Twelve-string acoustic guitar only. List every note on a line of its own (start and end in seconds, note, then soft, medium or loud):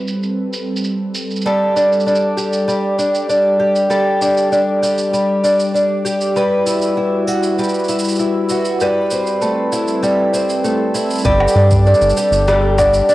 1.46 2.67 G3 medium
1.46 3.90 A4 medium
1.76 2.06 D4 medium
2.06 2.98 D4 medium
2.37 3.59 G4 medium
2.68 3.89 G3 medium
2.98 3.29 D4 medium
3.29 4.21 D4 medium
3.60 4.82 G4 medium
3.90 5.12 G3 medium
3.90 6.35 A4 medium
4.21 4.51 D4 medium
4.52 5.42 D4 medium
4.82 6.04 G4 medium
5.13 6.35 G3 medium
5.44 5.73 D4 medium
5.74 6.41 D4 medium
6.05 6.41 G4 medium
6.36 7.57 G3 medium
6.36 8.81 B4 medium
6.66 6.96 E4 medium
6.97 7.88 E4 medium
7.27 8.49 F#4 medium
7.58 8.80 G3 medium
7.89 8.19 E4 medium
8.19 9.11 E4 medium
8.50 8.87 F#4 medium
8.81 10.02 G3 medium
8.81 11.26 B4 medium
9.12 10.32 C4 medium
9.41 10.64 A3 medium
9.72 10.93 E4 medium
10.03 11.25 G3 medium
10.33 11.31 C4 medium
10.64 11.24 A3 medium
10.94 11.31 E4 medium
11.25 12.48 G3 medium
11.56 11.86 D4 medium
11.87 12.78 D4 medium
12.17 13.15 G4 medium
12.48 13.15 G3 medium
12.78 13.08 D4 medium
13.09 13.15 D4 medium